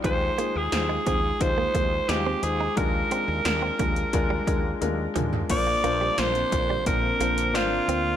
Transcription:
<<
  \new Staff \with { instrumentName = "Alto saxophone" } { \time 4/4 \key bes \mixolydian \tempo 4 = 88 c''8. aes'8. aes'8 c''4 g'8 aes'8 | bes'2. r4 | d''4 c''4 bes'4 f'4 | }
  \new Staff \with { instrumentName = "Grand piano" } { \time 4/4 \key bes \mixolydian <aes ees' f' c''>8 <aes ees' f' aes'>8 <aes ees' f' c''>8 <aes ees' f' aes'>8 <aes ees' f' c''>8 <aes ees' f' c''>8 <aes ees' f' c''>8 <aes ees' f' c''>8 | <aes d' f' bes'>8 <aes d' f' bes'>8 <aes d' f' bes'>8 <aes d' f' bes'>8 <aes d' f' bes'>8 <aes d' f' bes'>8 <aes d' f' bes'>8 <aes d' f' bes'>8 | <bes d' f' c''>8 <bes d' f' c''>8 <bes d' f' c''>8 <bes d' f' c''>8 <bes d' f' c''>8 <bes d' f' c''>8 <bes d' f' c''>8 <bes d' f' c''>8 | }
  \new Staff \with { instrumentName = "Grand piano" } { \clef bass \time 4/4 \key bes \mixolydian ees4. r2 r8 | ees4. r2 r8 | bes,4. r2 r8 | }
  \new Staff \with { instrumentName = "Analog synth pad" } { \time 4/4 \key bes \mixolydian r1 | r1 | <d bes c'>1 | }
  \new Staff \with { instrumentName = "Clean electric guitar" } { \time 4/4 \key bes \mixolydian f16 r16 bes16 r8 aes16 c'16 r8 bes16 bes16 r8 c'16 r16 ees'16 | bes16 r16 c'16 r8 c'16 bes16 r8 g16 aes16 r8. f16 r16 | r8 bes16 g16 f16 r8 g16 r8 bes16 r8. c'16 r16 | }
  \new Staff \with { instrumentName = "Fretless electric bass" } { \clef bass \time 4/4 \key bes \mixolydian ees,8 r16 ees,16 ees,8 ees,8 ees,8 ees,8 ees,8 ees,8 | ees,8 r16 ees,16 ees,8 ees,8 ees,8 ees,8 ees,8 ees,8 | bes,,8 bes,,8 bes,,8 bes,,8 bes,,8 bes,,8 aes,,8 d,8 | }
  \new DrumStaff \with { instrumentName = "Drums" } \drummode { \time 4/4 <hh bd>8 hh8 <hh sn>8 <hh bd>8 <hh bd>8 <hh bd>8 <hh sn>8 hh8 | <hh bd>8 hh8 <hh sn>8 <hh bd>16 hh16 <hh bd>8 <hh bd>8 <hh tommh>8 <hh toml>16 tomfh16 | <cymc hh bd>8 hh8 <hh sn>16 hh16 <hh bd>8 <hh bd>8 hh16 hh16 <hh sn>8 hh8 | }
>>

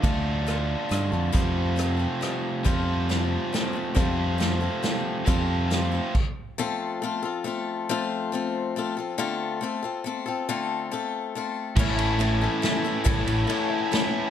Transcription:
<<
  \new Staff \with { instrumentName = "Steel-string acoustic guitar" } { \time 3/4 \key f \major \tempo 4 = 139 <d a d' f' a'>4 <a d' f' a'>4 <a d' f' a'>8 <d' f' a'>8 | <f g c' f' a'>4 <g c' f' a'>8 <c' f' a'>8 <g c' f' a'>4 | <f g c' f' a'>4 <g c' f' a'>4 <g c' f' a'>8 <c' f' a'>8 | <f g c' f' a'>4 <g c' f' a'>8 <c' f' a'>8 <g c' f' a'>4 |
<f g c' f' a'>4 <g c' f' a'>8 <c' f' a'>8 r4 | <f a c' f' a'>4 <a c' f' a'>8 <c' f' a'>8 <a c' f' a'>4 | <f a c' f' a'>4 <a c' f' a'>4 <a c' f' a'>8 <c' f' a'>8 | <d a c' f' a'>4 <a c' f' a'>8 <c' f' a'>8 <a c' f' a'>8 <c' f' a'>8 |
<d a c' f' a'>4 <a c' f' a'>4 <a c' f' a'>4 | <a, e a cis' e' a'>4 <a cis' e' a'>8 <a cis' e' a'>8 <a cis' e' a'>8 <a cis' e' a'>8 | <a, e a cis' e' a'>4 <a cis' e' a'>4 <a cis' e' a'>4 | }
  \new Staff \with { instrumentName = "Overdriven electric guitar" } { \time 3/4 \key f \major <d a d' f'>2. | <f, c f a c' f'>2. | <f, c f a c' f'>2. | <f, c f a c' f'>2. |
<f, c f a c' f'>2 r4 | r2. | r2. | r2. |
r2. | <a, e a cis' e'>8 <a cis' e'>8 <e a cis' e'>8 <a cis' e'>4. | <a, e a cis' e'>8 <a cis' e'>8 <e a cis' e'>8 <a cis' e'>4. | }
  \new Staff \with { instrumentName = "Fingered electric bass" } { \clef bass \time 3/4 \key f \major d,2 g,8 f,8 | f,2 r4 | f,2 r4 | f,2 r4 |
f,2 r4 | r2. | r2. | r2. |
r2. | a,,2 r4 | a,,8 a,,8 r2 | }
  \new DrumStaff \with { instrumentName = "Drums" } \drummode { \time 3/4 <hh bd>4 <hh ss>4 <hh ss>4 | <hh bd>4 <hh ss>4 <hh ss>4 | <hh bd>4 <hh sn>4 <hh sn>4 | <hh bd>4 <hh sn>4 <hh sn>4 |
<hh bd>4 <hh sn>4 <cymc bd>4 | r4 r4 r4 | r4 r4 r4 | r4 r4 r4 |
r4 r4 r4 | <cymc bd>8 cymr8 cymr4 <cymr sn>4 | <bd cymr>8 cymr8 cymr4 <cymr sn>4 | }
>>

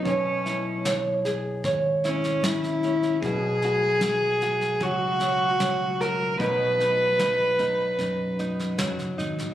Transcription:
<<
  \new Staff \with { instrumentName = "Cello" } { \time 4/4 \key b \major \tempo 4 = 76 cis'4 r4. cis'8 e'4 | gis'2 fis'4. ais'8 | b'2. r4 | }
  \new Staff \with { instrumentName = "Nylon-string guitar" } { \time 4/4 \key b \major << { cis''8 e'8 cis''8 gis'8 cis''8 e'4 cis'8 | fis'8 fis'8 fis'8 fis'8 fis8 fis8 r8 fis'8 | <fis dis'>8 dis'8 dis'8 dis'8 dis'8 dis'4 dis'8 | } \\ { b,2. cis'8 r8 | b,2. fis4 | b,2. fis4 | } >> }
  \new Staff \with { instrumentName = "Fingered electric bass" } { \clef bass \time 4/4 \key b \major b,,2 gis,,4 gis,,4 | b,,2 cis,4 cis,4 | b,,2 fis,4 fis,16 fis,,16 gis,,16 ais,,16 | }
  \new DrumStaff \with { instrumentName = "Drums" } \drummode { \time 4/4 <bd sn>8 sn8 sn8 sn8 <bd sn>8 sn16 sn16 sn16 sn16 sn16 sn16 | <bd sn>8 sn8 sn8 sn16 sn16 <bd sn>8 sn8 sn8 sn8 | <bd sn>8 sn8 sn8 <bd sn>8 <bd sn>8 sn16 sn16 sn16 sn16 sn16 sn16 | }
>>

